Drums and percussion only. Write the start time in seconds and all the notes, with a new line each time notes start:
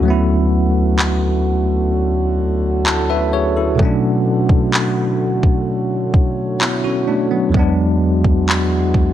0.99 clap
2.86 clap
3.79 kick
4.49 kick
4.74 clap
5.43 kick
6.14 kick
6.61 clap
7.54 kick
8.24 kick
8.49 clap
8.94 kick